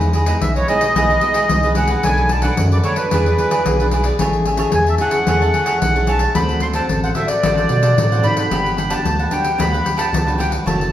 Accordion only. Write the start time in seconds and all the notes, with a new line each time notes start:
0.41 E5
0.56 C#5
0.68 D#5
1.76 F#5
2.04 G#5
2.29 A5
2.42 F#5
2.72 D5
2.84 C#5
2.96 B4
4.75 G#5
4.89 E5
5.01 F#5
6.08 A5
6.35 B5
6.62 C6
6.75 A5
7.04 F#5
7.16 E5
7.27 D5
8.24 B5
8.90 A5
9.31 G5
9.60 B5
9.98 A5
10.39 G5
10.67 A5